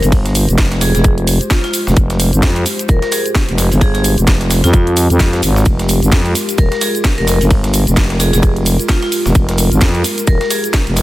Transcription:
Already playing: G#3 F4 G4 C5
0.02 G1, closed hi-hat, shaker
0.12 kick, closed hi-hat, open hi-hat, shaker
0.26 snare, closed hi-hat
0.35 open hi-hat, shaker
0.49 F1, closed hi-hat, shaker
0.58 kick, snare, closed hi-hat, shaker
0.72 snare, closed hi-hat
0.81 G#4, snare, open hi-hat, shaker
0.95 F1 G#4, snare, closed hi-hat, shaker
1.04 kick, closed hi-hat, shaker
1.18 closed hi-hat
1.27 open hi-hat, shaker
1.41 closed hi-hat, shaker
1.50 F4, kick, snare, closed hi-hat, shaker
1.64 F4, snare, closed hi-hat
1.74 open hi-hat, shaker
1.87 F1, snare, shaker
1.97 kick, closed hi-hat, shaker
2.10 snare, closed hi-hat
2.20 open hi-hat, shaker
2.33 G#1, closed hi-hat, shaker
2.43 F2, kick, snare, closed hi-hat, shaker
2.56 closed hi-hat
2.66 open hi-hat, shaker
2.79 closed hi-hat, shaker
2.89 D#1 A#4, kick, closed hi-hat, shaker
3.02 A#4, snare, closed hi-hat
3.12 G#4, snare, open hi-hat, shaker
3.26 closed hi-hat, shaker
3.35 kick, snare, closed hi-hat, shaker
3.48 F1, closed hi-hat
3.58 snare, open hi-hat, shaker
3.72 G1, closed hi-hat, shaker
3.81 G#4, kick, closed hi-hat, open hi-hat, shaker
3.94 G#4, snare, closed hi-hat
4.04 open hi-hat, shaker
4.18 F1, closed hi-hat, shaker
4.27 kick, snare, closed hi-hat, shaker
4.41 snare, closed hi-hat
4.51 snare, open hi-hat, shaker
4.64 F2 F4, snare, closed hi-hat, shaker
4.74 kick, closed hi-hat, shaker
4.87 closed hi-hat
4.97 open hi-hat, shaker
5.10 F2, closed hi-hat, shaker
5.20 kick, snare, closed hi-hat, shaker
5.33 snare, closed hi-hat
5.43 G#1, open hi-hat, shaker
5.56 snare, shaker
5.66 A#4, kick, closed hi-hat, ride, shaker
5.79 snare, closed hi-hat
5.89 open hi-hat, shaker
6.02 G#1, closed hi-hat, shaker
6.12 F2, kick, snare, closed hi-hat, ride, shaker
6.26 closed hi-hat
6.35 open hi-hat, shaker
6.49 closed hi-hat, shaker
6.58 D#1 A#4, kick, closed hi-hat, ride, shaker
6.72 A#4, snare, closed hi-hat
6.81 G#4, snare, open hi-hat, shaker
6.95 closed hi-hat, shaker
7.04 kick, snare, closed hi-hat, ride, shaker
7.18 F1 A#4, closed hi-hat
7.27 A#4, snare, open hi-hat, shaker
7.41 G1, closed hi-hat, shaker
7.51 kick, closed hi-hat, open hi-hat, ride, shaker
7.64 snare, closed hi-hat
7.74 open hi-hat, shaker
7.87 F1, closed hi-hat, shaker
7.97 kick, snare, closed hi-hat, ride, shaker
8.10 snare, closed hi-hat
8.20 G#4, snare, open hi-hat, shaker
8.33 F1 G#4, snare, closed hi-hat, shaker
8.43 kick, closed hi-hat, ride, shaker
8.56 closed hi-hat
8.66 open hi-hat, shaker
8.79 closed hi-hat, shaker
8.89 F4, kick, snare, closed hi-hat, ride, shaker
9.02 F4, snare, closed hi-hat
9.12 open hi-hat, shaker
9.26 F1, snare, shaker
9.35 kick, closed hi-hat, ride, shaker
9.49 snare, closed hi-hat
9.58 open hi-hat, shaker
9.72 G#1, closed hi-hat, shaker
9.81 F2, kick, snare, closed hi-hat, ride, shaker
9.95 closed hi-hat
10.04 open hi-hat, shaker
10.18 closed hi-hat, shaker
10.27 D#1 A#4, kick, closed hi-hat, ride, shaker
10.41 A#4, snare, closed hi-hat
10.50 G#4, snare, open hi-hat, shaker
10.64 closed hi-hat, shaker
10.74 kick, snare, closed hi-hat, ride, shaker
10.87 F1, closed hi-hat
10.97 snare, open hi-hat, shaker

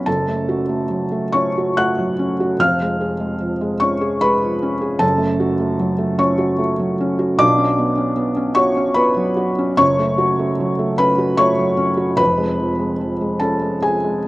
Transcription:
0.06 F#1 F#2 A4 A5
0.28 A3
0.49 F#4
0.69 A3
0.90 F#3
1.12 A3
1.32 C#4 C#5 C#6
1.58 F#4
1.77 A3 F#5 F#6
1.99 F#3
2.19 C#4
2.40 F#4
2.59 F1 F2 F5 F6
2.82 G#3
3.01 G#4
3.20 G#3
3.40 F3
3.61 G#3
3.80 C#4 C#5 C#6
4.01 G#4
4.21 G#3 B4 B5
4.42 F3
4.62 C#4
4.81 G#4
4.99 F#1 F#2 A4 A5
5.18 A3
5.40 F#4
5.60 A3
5.79 F#3
5.98 A3
6.19 C#4 C#5 C#6
6.38 F#4
6.59 A3
6.79 F#3
7.01 C#4
7.19 F#4
7.38 B1 B2 D4 D6
7.58 C#4
7.78 B3
7.97 C#4
8.17 B3
8.36 C#4
8.55 F#4 C#5 C#6
8.77 C#4
8.94 B3 B4 B5
9.17 F#3
9.37 F#4
9.59 C#4
9.77 F#1 F#2 C#5 C#6
9.99 A3
10.18 F#4
10.39 A3
10.60 F#3
10.79 A3
10.98 C#4 B4 B5
11.18 F#4
11.37 A3 C#5 C#6
11.58 F#3
11.77 C#4
11.97 F#4
12.17 F1 F2 B4 B5
12.37 G#3
12.59 F3
12.79 G#3
13.01 F3
13.21 G#3
13.40 C#4 A4 A5
13.62 G#3
13.82 F3 G#4 G#5
14.04 G#3

